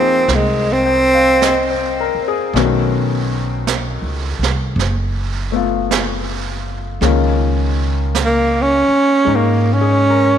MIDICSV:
0, 0, Header, 1, 6, 480
1, 0, Start_track
1, 0, Tempo, 1123596
1, 1083, Time_signature, 4, 2, 24, 8
1, 4436, End_track
2, 0, Start_track
2, 0, Title_t, "Grand piano"
2, 0, Program_c, 0, 0
2, 0, Control_c, 0, 64, 127
2, 0, Note_on_c, 0, 53, 41
2, 0, Note_on_c, 0, 56, 39
2, 0, Note_on_c, 0, 58, 40
2, 0, Note_on_c, 0, 60, 39
2, 0, Note_on_c, 0, 63, 32
2, 0, Note_on_c, 0, 65, 35
2, 0, Note_on_c, 0, 67, 45
2, 0, Note_on_c, 0, 68, 40
2, 369, Note_on_c, 0, 79, 37
2, 489, Note_on_c, 0, 77, 46
2, 515, Note_off_c, 0, 79, 0
2, 610, Note_on_c, 0, 75, 45
2, 653, Note_off_c, 0, 77, 0
2, 728, Note_on_c, 0, 72, 47
2, 828, Note_off_c, 0, 75, 0
2, 856, Note_on_c, 0, 70, 49
2, 929, Note_off_c, 0, 72, 0
2, 967, Note_off_c, 0, 68, 0
2, 973, Note_on_c, 0, 68, 49
2, 1000, Note_off_c, 0, 70, 0
2, 1075, Note_off_c, 0, 53, 0
2, 1082, Note_off_c, 0, 56, 0
2, 1084, Note_off_c, 0, 58, 0
2, 1087, Note_off_c, 0, 63, 0
2, 1088, Note_off_c, 0, 60, 0
2, 1089, Note_off_c, 0, 65, 0
2, 1089, Control_c, 0, 64, 0
2, 1089, Note_on_c, 0, 51, 48
2, 1092, Note_on_c, 0, 57, 47
2, 1095, Note_on_c, 0, 59, 45
2, 1098, Note_on_c, 0, 61, 44
2, 1098, Note_on_c, 0, 66, 55
2, 1099, Note_off_c, 0, 67, 0
2, 1137, Note_off_c, 0, 68, 0
2, 1174, Control_c, 0, 64, 127
2, 2352, Note_off_c, 0, 57, 0
2, 2358, Note_off_c, 0, 59, 0
2, 2358, Note_on_c, 0, 57, 39
2, 2364, Note_on_c, 0, 59, 37
2, 2375, Note_on_c, 0, 65, 43
2, 2994, Note_off_c, 0, 51, 0
2, 2996, Note_off_c, 0, 61, 0
2, 2997, Note_on_c, 0, 56, 41
2, 2999, Note_off_c, 0, 65, 0
2, 3000, Note_on_c, 0, 51, 44
2, 3001, Note_off_c, 0, 57, 0
2, 3001, Note_on_c, 0, 58, 40
2, 3003, Note_on_c, 0, 61, 42
2, 3004, Note_off_c, 0, 59, 0
2, 3005, Note_on_c, 0, 65, 50
2, 3008, Control_c, 0, 64, 0
2, 3010, Note_off_c, 0, 66, 0
2, 3091, Control_c, 0, 64, 127
2, 3945, Note_off_c, 0, 56, 0
2, 3951, Note_on_c, 0, 56, 39
2, 3963, Note_on_c, 0, 63, 45
2, 4192, Note_on_c, 0, 68, 42
2, 4316, Note_on_c, 0, 70, 44
2, 4345, Note_off_c, 0, 68, 0
2, 4436, Note_off_c, 0, 51, 0
2, 4436, Note_off_c, 0, 56, 0
2, 4436, Note_off_c, 0, 58, 0
2, 4436, Note_off_c, 0, 61, 0
2, 4436, Note_off_c, 0, 63, 0
2, 4436, Note_off_c, 0, 65, 0
2, 4436, Note_off_c, 0, 70, 0
2, 4436, End_track
3, 0, Start_track
3, 0, Title_t, "Tenor saxophone"
3, 0, Program_c, 1, 66
3, 0, Note_on_c, 1, 60, 72
3, 149, Note_on_c, 1, 56, 58
3, 156, Note_off_c, 1, 60, 0
3, 309, Note_on_c, 1, 60, 87
3, 316, Note_off_c, 1, 56, 0
3, 777, Note_off_c, 1, 60, 0
3, 3524, Note_on_c, 1, 58, 65
3, 3682, Note_on_c, 1, 61, 82
3, 3688, Note_off_c, 1, 58, 0
3, 3996, Note_on_c, 1, 58, 56
3, 4002, Note_off_c, 1, 61, 0
3, 4156, Note_on_c, 1, 61, 80
3, 4163, Note_off_c, 1, 58, 0
3, 4436, Note_off_c, 1, 61, 0
3, 4436, End_track
4, 0, Start_track
4, 0, Title_t, "Upright bass"
4, 0, Program_c, 2, 32
4, 0, Note_on_c, 2, 41, 75
4, 101, Note_off_c, 2, 41, 0
4, 118, Note_on_c, 2, 36, 71
4, 903, Note_off_c, 2, 36, 0
4, 1083, Note_on_c, 2, 35, 77
4, 1708, Note_off_c, 2, 35, 0
4, 1718, Note_on_c, 2, 37, 58
4, 1870, Note_off_c, 2, 37, 0
4, 1874, Note_on_c, 2, 36, 59
4, 2028, Note_off_c, 2, 36, 0
4, 2033, Note_on_c, 2, 30, 77
4, 2979, Note_off_c, 2, 30, 0
4, 2995, Note_on_c, 2, 37, 76
4, 3777, Note_off_c, 2, 37, 0
4, 3959, Note_on_c, 2, 44, 74
4, 4436, Note_off_c, 2, 44, 0
4, 4436, End_track
5, 0, Start_track
5, 0, Title_t, "Muted upright bass strokes"
5, 917, Note_on_c, 9, 29, 35
5, 960, Note_off_c, 9, 29, 0
5, 3794, Note_on_c, 9, 29, 34
5, 3837, Note_off_c, 9, 29, 0
5, 4436, End_track
6, 0, Start_track
6, 0, Title_t, "Drums"
6, 120, Note_on_c, 9, 25, 34
6, 120, Note_on_c, 9, 38, 28
6, 163, Note_off_c, 9, 38, 0
6, 606, Note_off_c, 9, 25, 0
6, 606, Note_on_c, 9, 25, 33
6, 606, Note_on_c, 9, 38, 41
6, 606, Note_on_c, 9, 44, 55
6, 648, Note_off_c, 9, 38, 0
6, 648, Note_off_c, 9, 44, 0
6, 1092, Note_off_c, 9, 25, 0
6, 1092, Note_on_c, 9, 25, 42
6, 1092, Note_on_c, 9, 38, 28
6, 1135, Note_off_c, 9, 38, 0
6, 1568, Note_off_c, 9, 25, 0
6, 1568, Note_on_c, 9, 25, 33
6, 1568, Note_on_c, 9, 38, 40
6, 1568, Note_on_c, 9, 44, 53
6, 1611, Note_off_c, 9, 38, 0
6, 1611, Note_off_c, 9, 44, 0
6, 1892, Note_on_c, 9, 38, 26
6, 1935, Note_off_c, 9, 38, 0
6, 2047, Note_off_c, 9, 25, 0
6, 2047, Note_on_c, 9, 25, 30
6, 2047, Note_on_c, 9, 38, 28
6, 2089, Note_off_c, 9, 38, 0
6, 2524, Note_off_c, 9, 25, 0
6, 2524, Note_on_c, 9, 25, 38
6, 2524, Note_on_c, 9, 38, 45
6, 2524, Note_on_c, 9, 44, 53
6, 2567, Note_off_c, 9, 38, 0
6, 2567, Note_off_c, 9, 44, 0
6, 2998, Note_off_c, 9, 25, 0
6, 2998, Note_on_c, 9, 25, 39
6, 2998, Note_on_c, 9, 38, 28
6, 3041, Note_off_c, 9, 38, 0
6, 3480, Note_off_c, 9, 25, 0
6, 3480, Note_on_c, 9, 25, 38
6, 3480, Note_on_c, 9, 38, 44
6, 3480, Note_on_c, 9, 44, 51
6, 3523, Note_off_c, 9, 38, 0
6, 3523, Note_off_c, 9, 44, 0
6, 3957, Note_off_c, 9, 25, 0
6, 3957, Note_on_c, 9, 25, 32
6, 4436, Note_off_c, 9, 25, 0
6, 4436, End_track
0, 0, End_of_file